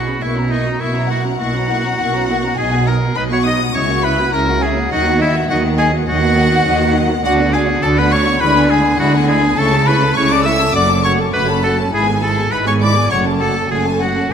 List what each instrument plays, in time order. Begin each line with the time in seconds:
Already playing: double bass section B1, cello section B2, oboe F#4
0.07 viola section C#4 G#4, violin section B5
0.21 double bass section B1, cello section B2, viola section A#3 E4, oboe E4, violin section E5 C#6
0.37 viola section C#4 F#4, violin section A#5
0.50 viola section A#3 E4, oboe D#4, violin section D#5 C#6
0.66 viola section C#4 F#4, violin section A#5
0.80 double bass section B1, cello section B2, viola section A#3 E4, oboe E4, violin section E5 C#6
0.96 viola section C#4 F#4, violin section A#5
1.08 viola section A#3 E4, oboe F#4, violin section F#5 C#6
1.25 viola section C#4 F#4, violin section A#5
1.39 double bass section B1, cello section B2, viola section A#3 E4, oboe F#4, violin section F#5 C#6
1.54 viola section C#4 F#4, violin section A#5
1.69 viola section A#3 E4, violin section C#6
1.84 viola section C#4 F#4, violin section A#5
1.99 double bass section B1, cello section B2, viola section A#3 E4, violin section C#6
2.14 viola section C#4 F#4, violin section A#5
2.29 viola section A#3 E4, violin section C#6
2.43 viola section C#4 F#4, violin section A#5
2.57 double bass section B1, cello section B2, viola section F#3 D#4, oboe G#4, violin section D#5 G#5
2.72 viola section B3 F#4, violin section F#5
2.87 viola section F#3 D#4, oboe A#4, violin section D#5 A#5
3.02 viola section B3 F#4, violin section F#5
3.16 double bass section B1, cello section B2, viola section F#3 D#4, oboe B4, violin section D#5 B5
3.30 viola section B3 F#4, oboe C#5, violin section F#5 C#6
3.45 viola section F#3 D#4, violin section D#5 D#6, oboe D#5
3.61 viola section B3 F#4, violin section F#5
3.74 double bass section C#2, cello section C#3, viola section C#4 E4, oboe C#5, violin section E5 C#6
3.89 viola section A#3 F#4, violin section F#5
4.03 viola section C#4 E4, oboe B4, violin section E5 B5
4.19 viola section A#3 F#4, violin section F#5
4.32 double bass section C#2, cello section C#3, viola section C#4 E4, oboe A#4, violin section E5 A#5
4.48 viola section A#3 F#4, violin section F#5
4.61 viola section C#4 E4, oboe G#4, violin section E5 G#5
4.77 viola section A#3 F#4, violin section F#5
4.90 double bass section D#2, cello section D#3, viola section F#3 D#4, oboe F#4, violin section D#5 F#5
5.06 viola section B3 F#4, violin section F#5
5.20 viola section F#3 D#4, oboe E4, violin section D#5 E5
5.35 viola section B3 F#4, violin section F#5
5.49 double bass section D#2, cello section D#3, viola section F#3 D#4, oboe F#4, violin section D#5 F#5
5.64 viola section B3 F#4, violin section F#5
5.78 viola section F#3 D#4, oboe G#4, violin section D#5 G#5
5.93 viola section B3 F#4, violin section F#5
6.07 double bass section D#2, cello section D#3, viola section F#3 D#4, oboe F#4, violin section D#5 F#5
6.22 viola section B3 F#4, violin section F#5
6.36 viola section F#3 D#4, violin section D#5
6.51 viola section B3 F#4, violin section F#5
6.66 double bass section D#2, cello section D#3, viola section F#3 D#4, violin section D#5
6.81 viola section B3 F#4, violin section F#5
6.95 viola section F#3 D#4, violin section D#5
7.09 viola section B3 F#4, violin section F#5
7.24 double bass section D2, cello section D3, viola section D4 F#4, oboe F#4, violin section D5 F#5
7.39 viola section B3 D4, violin section F#5
7.53 viola section D4 F#4, oboe G#4, violin section D5 G#5
7.67 viola section B3 D4, violin section F#5
7.82 double bass section D2, cello section D3, viola section D4 F#4, oboe A4, violin section D5 A5
7.97 viola section B3 D4, oboe B4, violin section F#5 B5
8.11 viola section D4 F#4, oboe C#5, violin section D5 C#6
8.26 viola section B3 D4, violin section F#5
8.40 double bass section D2, cello section D3, viola section G#3 E4, oboe B4, violin section B5
8.55 viola section B3 D4, violin section G#5
8.69 viola section G#3 E4, oboe G#4, violin section G#5 B5
8.84 viola section B3 D4, violin section G#5
8.98 double bass section D2, cello section D3, viola section G#3 E4, oboe F#4, violin section F#5 B5
9.14 viola section B3 D4, violin section G#5
9.27 viola section G#3 E4, oboe G#4, violin section G#5 B5
9.43 viola section B3 D4, violin section G#5
9.56 double bass section C#2, cello section C#3, viola section A3 E4, oboe A4, violin section A5 C#6
9.73 viola section C#4 A4, violin section A5
9.86 viola section A3 E4, oboe B4, violin section B5 C#6
10.02 viola section C#4 A4, violin section A5
10.15 double bass section C#2, cello section C#3, viola section A3 E4, oboe C#5, violin section C#6
10.30 viola section C#4 A4, oboe D5, violin section A5 D6
10.44 viola section A3 E4, oboe E5, violin section C#6 E6
10.60 viola section C#4 A4, violin section A5
10.74 double bass section F#1, cello section F#2, viola section A3 F#4, oboe D5, violin section F#5 D6
10.90 viola section C#4 A4, violin section A5
11.04 viola section A3 F#4, oboe C#5, violin section F#5 C#6
11.19 viola section C#4 A4, violin section A5
11.33 double bass section F#1, cello section F#2, viola section A3 F#4, oboe B4, violin section F#5 B5
11.48 viola section C#4 A4, violin section A5
11.63 viola section A3 F#4, oboe A4, violin section F#5 A5
11.78 viola section C#4 A4, violin section A5
11.93 double bass section G#1, cello section G#2, viola section G#3 E4, oboe G#4, violin section G#5 B5
12.08 viola section B3 G#4, violin section G#5
12.22 viola section G#3 E4, oboe A4, violin section A5 B5
12.38 viola section B3 G#4, violin section G#5
12.51 double bass section G#1, cello section G#2, viola section G#3 E4, oboe B4, violin section B5
12.66 viola section B3 G#4, oboe C#5, violin section G#5 C#6
12.81 viola section G#3 E4, oboe D5, violin section B5 D6
12.97 viola section B3 G#4, violin section G#5
13.10 double bass section F#1, cello section F#2, viola section A3 F#4, oboe C#5, violin section F#5 C#6
13.26 viola section C#4 A4, violin section A5
13.40 viola section A3 F#4, oboe A4, violin section F#5 A5
13.56 viola section C#4 A4, violin section A5
13.70 double bass section F#1, cello section F#2, viola section A3 F#4, oboe G#4, violin section F#5 G#5
13.85 viola section C#4 A4, violin section A5
14.01 viola section A3 F#4, oboe F#4, violin section F#5
14.16 viola section C#4 A4, violin section A5